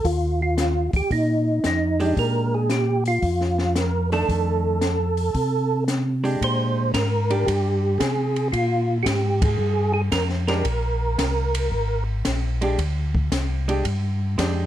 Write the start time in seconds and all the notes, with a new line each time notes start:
0.04 D#2 F4, kick, open hi-hat
0.42 F4
0.58 snare, closed hi-hat
0.93 D#2 G4, kick, open hi-hat
1.10 A#2 D#4, kick, open hi-hat
1.64 F2 D#4, snare, closed hi-hat
2.00 G#3 D4 G4, open hi-hat
2.17 A#2 A#4, kick, open hi-hat
2.54 G#4
2.69 G4, snare, closed hi-hat
3.05 F4, open hi-hat
3.22 F2, kick, open hi-hat
3.41 snare
3.58 snare
3.75 A#4, snare, closed hi-hat
4.12 D#3 A3 D4 A4, open hi-hat
4.28 F2, kick, open hi-hat
4.81 snare, closed hi-hat
5.17 open hi-hat
5.34 C3, kick, open hi-hat
5.88 snare, closed hi-hat
6.24 G#3 D4 G4, open hi-hat
6.41 A#2 C5, kick, ride
6.94 G#2 A#4, kick, snare, hi-hat pedal, ride
7.30 D4 G4, ride
7.46 G2 G4, kick, ride
7.98 C3 G#4, kick, snare, hi-hat pedal, ride
8.36 ride
8.52 A#2 F4, kick, ride
9.03 G#2 F#4 G4, kick, snare, hi-hat pedal, ride
9.42 G#4, kick, ride
9.58 G2
9.94 G#4
10.12 F2 A#4, kick, snare, hi-hat pedal, ride
10.29 snare
10.47 G#3 D4 G4 A#4, snare, ride
10.65 A#1, kick, ride
11.18 C2, kick, snare, hi-hat pedal, ride
11.55 ride
11.72 G#1, kick
12.25 A#1, kick, snare, hi-hat pedal, ride
12.61 G#3 D4 G4, ride
12.78 D2, kick, ride
13.15 kick
13.32 C2, kick, snare, hi-hat pedal, ride
13.68 G#3 D4 G4, ride
13.85 G2, kick, ride
14.38 F2 G#3 D4 G4, kick, snare, hi-hat pedal, ride